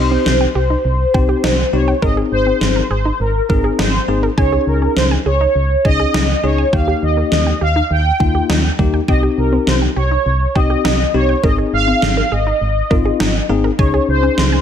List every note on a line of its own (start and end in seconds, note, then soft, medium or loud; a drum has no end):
0.00 0.17 C2 loud
0.00 0.49 C4 medium
0.00 0.49 D#4 medium
0.00 0.49 G4 medium
0.00 0.54 C5 medium
0.11 0.23 C4 medium
0.26 0.47 C2 loud
0.26 snare loud
0.41 0.53 G5 medium
0.55 0.76 C2 loud
0.55 0.67 G4 medium
0.55 1.77 C5 loud
0.70 0.82 D#4 medium
0.85 1.05 C2 loud
1.14 1.35 C2 medium
1.14 1.55 C4 medium
1.14 1.55 D#4 medium
1.14 1.55 G4 medium
1.14 1.26 G5 medium
1.14 kick medium
1.29 1.41 G4 medium
1.44 1.64 C2 loud
1.44 1.56 D#4 medium
1.44 snare loud
1.73 1.94 C2 loud
1.73 1.85 G3 medium
1.73 1.93 C4 medium
1.73 1.94 D#4 medium
1.73 1.94 G4 medium
1.73 2.03 C#5 medium
1.88 2.00 G5 medium
2.02 2.23 G#1 loud
2.02 2.84 C4 medium
2.02 2.84 D#4 medium
2.02 2.84 G#4 medium
2.02 2.14 A#4 loud
2.02 2.16 D#5 medium
2.02 kick loud
2.17 2.29 G#4 medium
2.32 2.52 G#1 loud
2.32 2.87 C5 medium
2.47 2.58 C4 medium
2.61 2.82 G#1 loud
2.61 snare loud
2.76 2.88 A#4 medium
2.90 3.11 G#1 loud
2.90 3.03 G#4 medium
2.90 3.18 C5 medium
3.05 3.17 D#4 medium
3.20 3.41 G#1 loud
3.20 3.48 A#4 medium
3.49 3.70 G#1 loud
3.49 3.90 C4 medium
3.49 3.90 D#4 medium
3.49 3.90 G#4 medium
3.49 3.80 A#4 medium
3.49 3.61 A#4 medium
3.49 kick medium
3.64 3.76 G#4 medium
3.79 3.99 G#1 loud
3.79 3.91 D#4 medium
3.79 4.20 C5 medium
3.79 snare loud
4.08 4.29 G#1 loud
4.08 4.20 A#3 medium
4.08 4.29 C4 medium
4.08 4.29 D#4 medium
4.08 4.29 G#4 medium
4.23 4.35 A#4 medium
4.38 4.58 C#2 loud
4.38 5.19 C#4 medium
4.38 5.19 D#4 medium
4.38 5.19 G#4 medium
4.38 4.65 C#5 medium
4.38 4.50 G#5 loud
4.38 kick loud
4.52 4.64 G#4 medium
4.67 4.88 C#2 loud
4.67 4.94 A#4 medium
4.82 4.94 C#4 medium
4.96 5.17 C#2 loud
4.96 5.10 C5 medium
4.96 snare loud
5.11 5.23 G#5 medium
5.26 5.46 C#2 medium
5.26 5.38 G#4 medium
5.26 5.86 C#5 loud
5.41 5.53 D#4 medium
5.55 5.76 C#2 loud
5.85 6.06 C#2 loud
5.85 6.25 C#4 medium
5.85 6.26 D#4 medium
5.85 6.26 G#4 medium
5.85 6.45 D#5 loud
5.85 5.97 G#5 medium
5.85 kick medium
6.00 6.12 G#4 medium
6.14 6.35 C#2 loud
6.14 6.26 D#4 medium
6.14 snare loud
6.44 6.64 C#2 medium
6.44 6.56 G#3 medium
6.44 6.64 C#4 medium
6.44 6.64 D#4 medium
6.44 6.64 G#4 medium
6.44 6.74 C#5 loud
6.58 6.70 G#5 medium
6.73 6.94 D#2 loud
6.73 7.55 A#3 medium
6.73 7.55 D#4 medium
6.73 7.55 G4 medium
6.73 7.03 F5 loud
6.73 6.85 G5 loud
6.73 kick loud
6.88 7.00 G4 medium
7.03 7.23 D#2 medium
7.03 7.31 D#5 loud
7.17 7.29 A#3 medium
7.32 7.53 D#2 loud
7.32 7.59 D#5 loud
7.32 snare loud
7.47 7.59 G5 medium
7.61 7.82 D#2 medium
7.61 7.73 G4 medium
7.61 7.92 F5 loud
7.76 7.88 D#4 medium
7.91 8.11 D#2 loud
7.91 8.75 G5 loud
8.20 8.41 D#2 loud
8.20 8.61 A#3 medium
8.20 8.61 D#4 medium
8.20 8.61 F4 medium
8.20 8.32 G5 medium
8.20 kick medium
8.35 8.47 G4 medium
8.49 8.70 D#2 loud
8.49 8.61 D#4 medium
8.49 snare loud
8.79 9.00 D#2 loud
8.79 8.91 G3 medium
8.79 8.99 A#3 medium
8.79 8.99 D#4 medium
8.79 8.99 G4 medium
8.79 kick medium
8.94 9.06 G5 medium
9.08 9.29 C2 loud
9.08 9.90 C4 medium
9.08 9.90 D#4 medium
9.08 9.90 G4 medium
9.08 9.22 D#5 medium
9.08 9.20 G5 loud
9.08 kick loud
9.23 9.35 G4 medium
9.38 9.58 C2 loud
9.38 9.68 A#4 medium
9.52 9.64 C4 medium
9.67 9.88 C2 loud
9.67 9.80 C5 medium
9.67 snare loud
9.82 9.94 G5 medium
9.96 10.17 C2 loud
9.96 10.08 G4 medium
9.96 10.57 C#5 loud
10.11 10.23 D#4 medium
10.26 10.47 C2 loud
10.55 10.76 C2 medium
10.55 10.96 C4 medium
10.55 10.96 D#4 medium
10.55 10.96 G4 medium
10.55 11.16 D#5 loud
10.55 10.67 G5 medium
10.55 kick medium
10.70 10.82 G4 medium
10.85 11.05 C2 loud
10.85 10.97 D#4 medium
10.85 snare loud
11.14 11.35 C2 loud
11.14 11.26 G3 medium
11.14 11.35 C4 medium
11.14 11.35 D#4 medium
11.14 11.35 G4 medium
11.14 11.45 C#5 medium
11.29 11.41 G5 medium
11.44 11.64 G#1 loud
11.44 12.25 C4 medium
11.44 12.25 D#4 medium
11.44 12.25 G#4 medium
11.44 11.55 A#4 loud
11.44 11.57 D#5 loud
11.44 kick loud
11.58 11.70 G#4 medium
11.73 11.94 G#1 medium
11.73 12.34 F5 loud
11.88 12.00 C4 medium
12.02 12.23 G#1 loud
12.02 snare loud
12.17 12.29 A#4 medium
12.32 12.52 G#1 loud
12.32 12.44 G#4 medium
12.32 13.46 D#5 loud
12.47 12.59 D#4 medium
12.61 12.82 G#1 loud
12.90 13.11 G#1 loud
12.90 13.31 C4 medium
12.90 13.31 D#4 medium
12.90 13.31 F4 medium
12.90 13.03 A#4 medium
12.90 kick medium
13.05 13.17 G#4 medium
13.20 13.41 G#1 loud
13.20 13.32 D#4 medium
13.20 snare loud
13.49 13.70 G#1 loud
13.49 13.61 A#3 medium
13.49 13.70 C4 medium
13.49 13.70 D#4 medium
13.49 13.70 G#4 medium
13.64 13.76 A#4 medium
13.79 13.99 C#2 loud
13.79 14.60 C#4 medium
13.79 14.60 D#4 medium
13.79 14.60 G#4 medium
13.79 14.06 C#5 medium
13.79 13.91 G#5 medium
13.79 kick loud
13.94 14.06 G#4 medium
14.08 14.29 C#2 medium
14.08 14.62 C5 medium
14.23 14.35 C#4 medium
14.38 14.58 C#2 loud
14.38 snare loud
14.52 14.62 G#5 medium